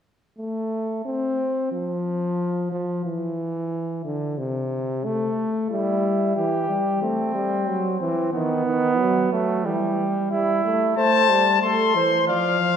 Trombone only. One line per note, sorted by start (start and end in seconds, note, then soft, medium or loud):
0.39 1.01 A3 medium
1.05 1.71 C4 medium
1.72 2.70 F3 medium
2.72 3.04 F3 medium
3.05 4.03 E3 medium
4.05 4.39 D3 medium
4.38 5.06 C3 medium
5.05 5.70 A3 medium
5.71 6.35 G3 medium
6.36 6.69 E3 medium
6.69 7.02 G3 medium
7.02 7.34 A3 medium
7.35 7.69 G3 medium
7.68 8.00 F#3 medium
8.01 8.33 E3 medium
8.33 8.66 D#3 medium
8.66 9.00 D#3 medium
8.99 9.32 F#3 medium
9.32 9.67 F#3 medium
9.65 10.08 E3 medium
10.31 10.62 G3 medium
10.64 10.96 A3 medium
10.97 11.31 A3 medium
11.29 11.62 G3 medium
11.62 11.97 A3 medium
11.95 12.27 E3 medium
12.28 12.77 F3 medium